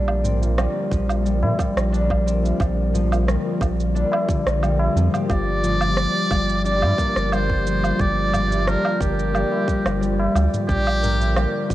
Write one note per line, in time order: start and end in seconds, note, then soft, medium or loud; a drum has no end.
0.00 0.67 A#1 medium
0.00 5.26 D3 medium
0.00 5.26 F3 medium
0.00 10.65 A#3 medium
0.00 0.23 C4 medium
0.00 1.92 D4 medium
0.00 11.74 F4 medium
0.00 5.26 A#4 medium
0.08 low woodblock medium
0.24 2.26 C4 medium
0.24 tabla ge medium
0.24 shaker medium
0.42 tabla tin soft
0.42 shaker soft
0.58 1.24 G3 medium
0.58 cross-stick medium
0.58 low woodblock medium
0.58 shaker soft
0.91 1.44 A#1 medium
0.91 2.93 F3 medium
0.91 kick loud
0.91 shaker medium
1.09 tabla tin soft
1.09 low woodblock medium
1.09 shaker soft
1.25 1.58 G3 medium
1.25 shaker soft
1.43 1.54 A#2 medium
1.43 tabla na medium
1.43 tabla ge medium
1.59 2.59 G3 medium
1.59 kick loud
1.59 low woodblock medium
1.59 shaker medium
1.76 2.52 A#1 medium
1.76 cross-stick medium
1.76 shaker soft
1.92 3.94 D4 medium
1.92 shaker soft
2.10 kick medium
2.10 low woodblock medium
2.26 5.26 C4 medium
2.26 shaker medium
2.44 tabla tin soft
2.44 shaker soft
2.60 3.37 A#1 loud
2.60 3.26 G3 medium
2.60 kick loud
2.60 low woodblock medium
2.60 shaker soft
2.93 4.34 F3 medium
2.93 tabla ge medium
2.93 shaker medium
3.11 tabla tin soft
3.11 low woodblock medium
3.11 shaker soft
3.27 3.60 G3 medium
3.27 cross-stick medium
3.27 shaker soft
3.44 tabla tin soft
3.61 4.04 A#1 medium
3.61 4.34 G3 medium
3.61 kick loud
3.61 low woodblock medium
3.61 shaker medium
3.79 tabla tin soft
3.79 shaker soft
3.95 6.64 D4 medium
3.95 shaker soft
4.12 tabla na medium
4.12 low woodblock medium
4.29 5.35 D3 medium
4.29 kick loud
4.29 shaker medium
4.46 4.89 A#1 medium
4.46 cross-stick medium
4.46 shaker soft
4.62 5.28 G3 medium
4.62 low woodblock medium
4.62 shaker soft
4.79 tabla na medium
4.96 5.09 F2 medium
4.96 5.35 F3 medium
4.96 shaker medium
5.14 7.49 G4 medium
5.14 tabla ge medium
5.14 low woodblock medium
5.14 shaker soft
5.29 6.07 G1 loud
5.29 11.74 D3 medium
5.29 10.65 G3 medium
5.29 5.96 G3 medium
5.29 10.65 G4 medium
5.29 6.61 D5 loud
5.29 kick loud
5.29 low woodblock medium
5.29 shaker soft
5.63 7.64 F3 medium
5.63 tabla ge medium
5.63 shaker medium
5.81 tabla tin soft
5.81 low woodblock medium
5.81 shaker soft
5.97 6.30 G3 medium
5.97 cross-stick medium
5.97 shaker soft
6.31 6.84 G1 medium
6.31 7.31 G3 medium
6.31 kick loud
6.31 low woodblock medium
6.31 shaker medium
6.49 tabla tin soft
6.49 shaker soft
6.65 8.66 D4 medium
6.65 7.35 D5 loud
6.65 shaker soft
6.82 6.94 G2 medium
6.82 tabla na medium
6.82 tabla ge medium
6.82 low woodblock medium
6.98 9.00 A#3 medium
6.98 kick medium
6.98 shaker medium
7.16 7.92 G1 loud
7.16 cross-stick medium
7.16 shaker soft
7.32 7.98 G3 medium
7.32 8.02 C5 loud
7.32 low woodblock medium
7.32 shaker soft
7.50 kick medium
7.65 9.66 F3 medium
7.65 shaker medium
7.84 tabla tin soft
7.84 low woodblock medium
7.84 shaker soft
7.99 8.76 G1 medium
7.99 8.32 G3 medium
7.99 8.70 D5 loud
7.99 kick loud
7.99 shaker soft
8.33 9.33 G3 medium
8.33 tabla ge medium
8.33 low woodblock medium
8.33 shaker medium
8.51 tabla tin soft
8.51 shaker soft
8.66 10.68 D4 medium
8.66 9.01 A#4 loud
8.66 cross-stick medium
8.66 shaker soft
8.85 low woodblock medium
9.00 9.44 G1 medium
9.00 11.02 A#3 medium
9.00 10.32 G4 medium
9.00 kick medium
9.00 shaker medium
9.19 shaker soft
9.34 10.00 G3 medium
9.34 low woodblock medium
9.34 shaker soft
9.52 tabla na medium
9.67 10.74 F3 medium
9.67 kick medium
9.67 shaker medium
9.85 10.28 G1 medium
9.85 cross-stick medium
9.85 low woodblock medium
9.85 shaker soft
10.01 10.34 G3 medium
10.01 shaker soft
10.19 tabla na medium
10.35 10.48 D2 loud
10.35 10.74 G3 medium
10.35 low woodblock medium
10.35 shaker medium
10.54 tabla ge medium
10.54 shaker soft
10.69 11.46 A#1 loud
10.69 11.74 F3 medium
10.69 11.74 A#3 medium
10.69 11.74 D4 loud
10.69 11.66 G4 loud
10.69 11.74 A#4 medium
10.69 kick loud
10.69 shaker soft
10.87 low woodblock medium
11.03 11.74 A#3 loud
11.03 tabla ge medium
11.03 shaker medium
11.20 tabla tin medium
11.20 shaker soft
11.36 11.74 G3 medium
11.36 cross-stick medium
11.36 low woodblock medium
11.36 shaker soft
11.70 11.74 A#1 medium
11.70 11.74 F3 medium
11.70 kick medium
11.70 shaker medium